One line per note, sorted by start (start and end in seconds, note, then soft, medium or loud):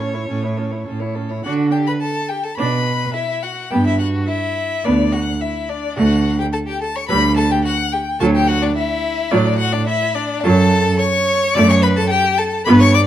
0.00 0.22 A2 medium
0.00 0.16 C#4 medium
0.00 0.16 A4 soft
0.00 0.87 C#5 medium
0.14 0.29 E4 soft
0.14 0.28 C#5 soft
0.29 0.80 A2 medium
0.29 0.45 C#4 soft
0.29 0.45 A4 medium
0.43 0.60 E4 soft
0.43 0.59 C#5 soft
0.57 0.73 C#4 soft
0.57 0.73 A4 soft
0.71 0.87 E4 soft
0.71 0.86 C#5 soft
0.86 1.38 A2 medium
0.86 1.02 C#4 soft
0.86 1.01 A4 soft
1.00 1.17 E4 soft
1.00 1.17 C#5 soft
1.15 1.32 C#4 soft
1.15 1.31 A4 soft
1.30 1.44 E4 soft
1.30 1.43 C#5 soft
1.44 1.92 D3 medium
1.44 1.71 D4 medium
1.44 1.71 F#4 medium
1.44 1.52 F#5 medium
1.72 1.90 G4 medium
1.72 1.78 G5 medium
1.87 2.02 B4 medium
1.87 1.93 B5 medium
2.01 2.32 A4 medium
2.01 2.31 A5 medium
2.29 2.43 G4 medium
2.29 2.45 G5 medium
2.44 2.50 A4 medium
2.44 2.57 A5 medium
2.58 3.06 B2 medium
2.58 2.84 D4 medium
2.58 3.16 B4 medium
2.58 3.14 B5 medium
3.14 3.45 E4 medium
3.14 3.44 E5 medium
3.43 3.71 F#4 medium
3.43 3.72 F#5 medium
3.71 4.19 G2 medium
3.71 3.98 B3 medium
3.71 3.77 G4 medium
3.71 3.85 G5 medium
3.86 3.99 E4 medium
3.86 3.99 E5 medium
3.99 4.30 F#4 medium
3.99 4.07 F#5 medium
4.28 4.85 E4 medium
4.28 4.87 E5 medium
4.84 5.32 D2 medium
4.84 5.11 B3 medium
4.84 4.94 D4 medium
4.84 5.14 D5 medium
5.13 5.21 F#4 medium
5.13 5.43 F#5 medium
5.41 5.71 E4 medium
5.41 5.71 E5 medium
5.69 5.98 D4 medium
5.69 5.97 D5 medium
5.97 6.44 D2 medium
5.97 6.23 A3 medium
5.97 6.38 F#4 medium
5.97 6.38 F#5 medium
6.38 6.44 G4 medium
6.38 6.46 G5 medium
6.53 6.58 A4 medium
6.53 6.58 A5 medium
6.67 6.80 G4 medium
6.67 6.81 G5 medium
6.81 6.87 A4 medium
6.81 6.98 A5 medium
6.96 7.01 C#5 medium
6.96 7.08 C#6 medium
7.08 7.56 D2 medium
7.08 7.35 G3 medium
7.08 7.16 B4 medium
7.08 7.36 B5 loud
7.37 7.43 A4 medium
7.37 7.53 A5 loud
7.51 7.64 G4 medium
7.51 7.64 G5 medium
7.65 7.73 F#4 medium
7.65 7.94 F#5 loud
7.93 8.01 G4 medium
7.93 8.19 G5 medium
8.20 8.67 D2 medium
8.20 8.47 F#3 medium
8.20 8.34 A4 medium
8.20 8.26 A5 loud
8.34 8.50 G4 medium
8.34 8.49 G5 loud
8.48 8.64 F#4 medium
8.48 8.64 F#5 loud
8.62 8.76 D4 medium
8.62 8.75 D5 medium
8.76 9.34 E4 loud
8.76 9.33 E5 medium
9.31 9.79 A2 medium
9.31 9.58 F#3 medium
9.31 9.59 D4 medium
9.31 9.58 D5 loud
9.58 9.75 F#4 medium
9.58 9.74 F#5 loud
9.73 9.89 D4 medium
9.73 9.86 D5 loud
9.87 10.17 E4 medium
9.87 10.16 E5 loud
10.15 10.45 D4 medium
10.15 10.42 D5 loud
10.43 10.90 F#2 loud
10.43 10.70 F#3 medium
10.43 11.01 A4 loud
10.43 10.98 A5 loud
10.99 11.56 C#5 loud
10.99 11.56 C#6 loud
11.54 12.02 F#2 medium
11.54 11.81 A3 medium
11.54 11.69 D5 loud
11.54 11.69 D6 loud
11.69 11.85 C#5 loud
11.69 11.75 C#6 loud
11.82 11.99 B4 loud
11.82 11.88 B5 loud
11.97 12.12 A4 loud
11.97 12.09 A5 loud
12.10 12.40 G4 loud
12.10 12.39 G5 loud
12.38 12.65 A4 medium
12.38 12.65 A5 loud
12.65 13.07 G2 loud
12.65 12.93 B3 loud
12.65 12.82 B4 loud
12.65 12.71 B5 loud
12.80 12.97 C#5 loud
12.80 12.94 C#6 loud
12.94 13.07 D5 loud
12.94 13.00 D6 loud